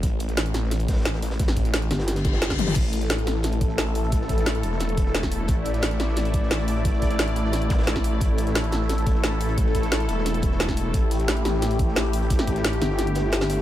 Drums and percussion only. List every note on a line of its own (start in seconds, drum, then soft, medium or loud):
0.03 kick loud
0.03 closed hi-hat medium
0.20 closed hi-hat medium
0.29 snare soft
0.29 closed hi-hat soft
0.37 snare loud
0.37 closed hi-hat medium
0.37 closed hi-hat loud
0.46 snare soft
0.46 closed hi-hat soft
0.54 snare soft
0.54 closed hi-hat medium
0.64 snare soft
0.71 snare soft
0.71 closed hi-hat loud
0.71 closed hi-hat medium
0.79 closed hi-hat soft
0.88 kick loud
0.88 snare medium
0.88 closed hi-hat medium
0.93 snare medium
0.93 closed hi-hat medium
0.96 snare medium
0.96 closed hi-hat medium
1.01 snare medium
1.01 closed hi-hat medium
1.05 snare loud
1.05 closed hi-hat medium
1.14 snare loud
1.14 closed hi-hat medium
1.22 snare loud
1.22 closed hi-hat medium
1.22 open hi-hat medium
1.31 snare loud
1.31 closed hi-hat medium
1.40 kick loud
1.40 snare loud
1.40 closed hi-hat medium
1.48 snare loud
1.48 snare medium
1.48 closed hi-hat medium
1.57 kick medium
1.57 closed hi-hat medium
1.65 snare medium
1.65 closed hi-hat soft
1.74 snare loud
1.74 closed hi-hat loud
1.74 closed hi-hat medium
1.82 snare medium
1.82 closed hi-hat soft
1.91 snare loud
1.91 snare medium
1.91 closed hi-hat medium
1.99 snare loud
1.99 closed hi-hat medium
2.08 snare loud
2.08 snare soft
2.08 closed hi-hat loud
2.08 closed hi-hat medium
2.16 snare loud
2.16 closed hi-hat soft
2.16 closed hi-hat medium
2.24 kick loud
2.24 snare loud
2.24 closed hi-hat medium
2.33 snare loud
2.33 closed hi-hat medium
2.42 snare loud
2.42 closed hi-hat loud
2.50 kick medium
2.50 snare loud
2.50 snare soft
2.50 snare medium
2.50 closed hi-hat medium
2.59 snare loud
2.59 closed hi-hat medium
2.59 open hi-hat medium
2.59 high tom medium
2.67 snare loud
2.67 closed hi-hat medium
2.67 mid tom medium
2.75 kick loud
2.75 closed hi-hat medium
2.75 crash medium
2.93 closed hi-hat medium
3.01 snare soft
3.01 closed hi-hat soft
3.10 snare loud
3.10 closed hi-hat medium
3.10 closed hi-hat loud
3.18 snare soft
3.18 closed hi-hat soft
3.27 snare medium
3.27 closed hi-hat medium
3.35 snare soft
3.43 snare soft
3.43 closed hi-hat medium
3.43 closed hi-hat loud
3.52 closed hi-hat soft
3.61 kick loud
3.61 closed hi-hat medium
3.69 snare soft
3.78 snare loud
3.78 closed hi-hat medium
3.78 closed hi-hat loud
3.86 closed hi-hat soft
3.95 closed hi-hat medium
3.95 open hi-hat medium
4.04 closed hi-hat soft
4.12 kick loud
4.12 closed hi-hat medium
4.21 snare medium
4.29 kick medium
4.29 closed hi-hat medium
4.38 snare medium
4.38 closed hi-hat soft
4.46 snare loud
4.46 closed hi-hat loud
4.46 closed hi-hat medium
4.55 snare medium
4.55 closed hi-hat soft
4.63 closed hi-hat medium
4.72 snare soft
4.80 snare soft
4.80 closed hi-hat medium
4.89 closed hi-hat soft
4.97 kick loud
4.97 closed hi-hat medium
5.06 snare soft
5.14 snare loud
5.14 closed hi-hat medium
5.23 kick medium
5.23 snare soft
5.32 closed hi-hat medium
5.32 open hi-hat medium
5.48 kick loud
5.48 closed hi-hat loud
5.48 closed hi-hat medium
5.65 closed hi-hat medium
5.74 snare soft
5.74 closed hi-hat soft
5.82 snare loud
5.82 closed hi-hat medium
5.91 snare soft
5.91 closed hi-hat soft
6.00 snare medium
6.00 closed hi-hat medium
6.08 snare soft
6.16 snare soft
6.16 closed hi-hat medium
6.25 closed hi-hat soft
6.33 kick loud
6.33 closed hi-hat medium
6.43 snare soft
6.51 snare loud
6.51 closed hi-hat medium
6.51 closed hi-hat loud
6.60 closed hi-hat soft
6.68 closed hi-hat medium
6.68 open hi-hat medium
6.76 closed hi-hat soft
6.85 kick loud
6.85 closed hi-hat medium
6.93 snare soft
7.02 kick medium
7.02 closed hi-hat medium
7.10 snare medium
7.10 closed hi-hat soft
7.19 snare loud
7.19 closed hi-hat medium
7.19 closed hi-hat loud
7.28 snare medium
7.28 closed hi-hat soft
7.36 closed hi-hat medium
7.45 snare soft
7.53 snare soft
7.53 closed hi-hat medium
7.53 closed hi-hat loud
7.62 closed hi-hat soft
7.70 kick loud
7.70 snare loud
7.70 closed hi-hat medium
7.79 snare medium
7.79 closed hi-hat medium
7.82 snare loud
7.82 closed hi-hat medium
7.87 snare loud
7.87 closed hi-hat medium
7.96 kick medium
7.96 snare soft
8.04 closed hi-hat medium
8.04 open hi-hat medium
8.21 kick loud
8.21 closed hi-hat medium
8.38 closed hi-hat medium
8.47 snare soft
8.47 closed hi-hat soft
8.55 snare loud
8.55 closed hi-hat loud
8.64 closed hi-hat soft
8.72 snare soft
8.72 closed hi-hat medium
8.81 snare soft
8.89 snare soft
8.89 closed hi-hat medium
8.98 closed hi-hat soft
9.07 kick loud
9.07 closed hi-hat medium
9.15 snare soft
9.24 snare loud
9.24 closed hi-hat medium
9.32 closed hi-hat soft
9.41 closed hi-hat medium
9.41 open hi-hat medium
9.48 closed hi-hat soft
9.58 kick loud
9.58 closed hi-hat medium
9.66 snare soft
9.75 kick medium
9.75 closed hi-hat medium
9.83 snare medium
9.83 closed hi-hat soft
9.92 snare loud
9.92 closed hi-hat medium
10.00 snare medium
10.00 closed hi-hat soft
10.09 closed hi-hat medium
10.18 snare soft
10.26 snare soft
10.26 closed hi-hat medium
10.26 closed hi-hat loud
10.34 closed hi-hat soft
10.42 kick loud
10.42 closed hi-hat medium
10.52 snare soft
10.60 snare loud
10.60 closed hi-hat medium
10.69 kick medium
10.69 snare soft
10.77 closed hi-hat medium
10.77 open hi-hat medium
10.94 kick loud
10.94 closed hi-hat medium
11.11 closed hi-hat medium
11.19 snare soft
11.19 closed hi-hat soft
11.28 snare loud
11.28 closed hi-hat loud
11.36 snare soft
11.36 closed hi-hat soft
11.45 snare soft
11.45 closed hi-hat medium
11.54 snare soft
11.62 snare soft
11.62 closed hi-hat medium
11.62 closed hi-hat loud
11.71 closed hi-hat soft
11.79 kick loud
11.79 closed hi-hat medium
11.88 snare soft
11.96 snare loud
11.96 closed hi-hat loud
11.96 closed hi-hat medium
12.04 closed hi-hat soft
12.13 closed hi-hat medium
12.13 open hi-hat medium
12.22 closed hi-hat soft
12.30 kick loud
12.30 closed hi-hat loud
12.30 closed hi-hat medium
12.39 snare soft
12.39 snare medium
12.47 kick medium
12.47 closed hi-hat medium
12.55 snare medium
12.55 closed hi-hat soft
12.64 snare loud
12.64 closed hi-hat medium
12.64 closed hi-hat loud
12.72 snare medium
12.72 closed hi-hat soft
12.82 snare soft
12.82 closed hi-hat medium
12.90 snare soft
12.99 snare soft
12.99 closed hi-hat medium
12.99 closed hi-hat loud
13.07 closed hi-hat soft
13.15 snare loud
13.15 closed hi-hat medium
13.24 snare soft
13.32 snare loud
13.32 closed hi-hat medium
13.32 closed hi-hat loud
13.41 snare soft
13.41 snare loud
13.41 snare medium
13.41 closed hi-hat medium
13.50 snare loud
13.50 closed hi-hat medium
13.50 open hi-hat medium
13.58 snare soft